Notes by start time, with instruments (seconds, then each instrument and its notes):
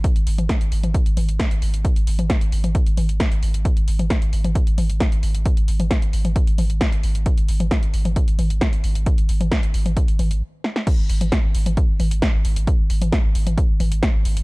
0.04 kick, closed hi-hat
0.16 sub bass G#1, closed hi-hat
0.27 sub bass G#1, open hi-hat
0.38 sub bass G#1, closed hi-hat, mid tom
0.49 kick, snare, closed hi-hat
0.61 sub bass G#1, closed hi-hat
0.72 sub bass G#1, open hi-hat
0.83 sub bass G#1, closed hi-hat, mid tom
0.94 kick, closed hi-hat
1.06 sub bass G#1, closed hi-hat
1.17 sub bass G#1, open hi-hat, mid tom
1.29 sub bass G#1, closed hi-hat
1.40 kick, snare, closed hi-hat
1.51 sub bass G#1, closed hi-hat
1.62 sub bass G#1, open hi-hat
1.74 sub bass G#1, closed hi-hat
1.85 kick, closed hi-hat
1.96 sub bass G#1, closed hi-hat
2.07 sub bass G#1, open hi-hat
2.19 sub bass G#1, closed hi-hat, mid tom
2.30 kick, snare, closed hi-hat
2.41 sub bass G#1, closed hi-hat
2.52 sub bass G#1, open hi-hat
2.64 sub bass G#1, closed hi-hat, mid tom
2.75 kick, closed hi-hat
2.86 sub bass G#1, closed hi-hat
2.97 sub bass G#1, open hi-hat, mid tom
3.09 sub bass G#1, closed hi-hat
3.20 kick, snare, closed hi-hat
3.32 sub bass G#1, closed hi-hat
3.43 sub bass G#1, open hi-hat
3.54 sub bass G#1, closed hi-hat
3.65 kick, closed hi-hat
3.77 sub bass G#1, closed hi-hat
3.88 sub bass G#1, open hi-hat
3.99 sub bass G#1, closed hi-hat, mid tom
4.10 kick, snare, closed hi-hat
4.22 sub bass G#1, closed hi-hat
4.33 sub bass G#1, open hi-hat
4.44 sub bass G#1, closed hi-hat, mid tom
4.55 kick, closed hi-hat
4.67 sub bass G#1, closed hi-hat
4.78 sub bass G#1, open hi-hat, mid tom
4.89 sub bass G#1, closed hi-hat
5.00 kick, snare, closed hi-hat
5.12 sub bass G#1, closed hi-hat
5.23 sub bass G#1, open hi-hat
5.35 sub bass G#1, closed hi-hat
5.46 kick, closed hi-hat
5.57 sub bass G#1, closed hi-hat
5.68 sub bass G#1, open hi-hat
5.80 sub bass G#1, closed hi-hat, mid tom
5.91 kick, snare, closed hi-hat
6.02 sub bass G#1, closed hi-hat
6.13 sub bass G#1, open hi-hat
6.25 sub bass G#1, closed hi-hat, mid tom
6.36 kick, closed hi-hat
6.47 sub bass G#1, closed hi-hat
6.58 sub bass G#1, open hi-hat, mid tom
6.70 sub bass G#1, closed hi-hat
6.81 kick, snare, closed hi-hat
6.92 sub bass G#1, closed hi-hat
7.03 sub bass G#1, open hi-hat
7.15 sub bass G#1, closed hi-hat
7.26 kick, closed hi-hat
7.38 sub bass G#1, closed hi-hat
7.49 sub bass G#1, open hi-hat
7.60 sub bass G#1, closed hi-hat, mid tom
7.71 kick, snare, closed hi-hat
7.83 sub bass G#1, closed hi-hat
7.94 sub bass G#1, open hi-hat
8.05 sub bass G#1, closed hi-hat, mid tom
8.16 kick, closed hi-hat
8.28 sub bass G#1, closed hi-hat
8.39 sub bass G#1, open hi-hat, mid tom
8.50 sub bass G#1, closed hi-hat
8.61 kick, snare, closed hi-hat
8.73 sub bass G#1, closed hi-hat
8.84 sub bass G#1, open hi-hat
8.95 sub bass G#1, closed hi-hat
9.06 kick, closed hi-hat
9.18 sub bass G#1, closed hi-hat
9.29 sub bass G#1, open hi-hat
9.41 sub bass G#1, closed hi-hat, mid tom
9.52 kick, snare, closed hi-hat
9.63 sub bass G#1, closed hi-hat
9.74 sub bass G#1, open hi-hat
9.86 sub bass G#1, closed hi-hat, mid tom
9.97 kick, closed hi-hat
10.08 sub bass G#1, closed hi-hat
10.19 sub bass G#1, open hi-hat, mid tom
10.31 sub bass G#1, closed hi-hat
10.64 snare
10.76 snare
10.87 kick, closed hi-hat, crash
10.99 sub bass G#1
11.09 sub bass G#1, open hi-hat
11.21 sub bass G#1, closed hi-hat, mid tom
11.32 kick, snare, closed hi-hat
11.44 sub bass G#1
11.55 sub bass G#1, open hi-hat
11.66 sub bass G#1, closed hi-hat, mid tom
11.77 kick, closed hi-hat
11.89 sub bass G#1
12.00 sub bass G#1, open hi-hat, mid tom
12.11 sub bass G#1, closed hi-hat
12.22 kick, snare, closed hi-hat
12.34 sub bass G#1
12.45 sub bass G#1, open hi-hat
12.56 sub bass G#1, closed hi-hat
12.67 kick, closed hi-hat
12.79 sub bass G#1
12.90 sub bass G#1, open hi-hat
13.01 sub bass G#1, closed hi-hat, mid tom
13.12 kick, snare, closed hi-hat
13.24 sub bass G#1
13.35 sub bass G#1, open hi-hat
13.46 sub bass G#1, closed hi-hat, mid tom
13.58 kick, closed hi-hat
13.69 sub bass G#1
13.80 sub bass G#1, open hi-hat, mid tom
13.92 sub bass G#1, closed hi-hat
14.03 kick, snare, closed hi-hat
14.14 sub bass G#1
14.25 sub bass G#1, open hi-hat
14.37 sub bass G#1, closed hi-hat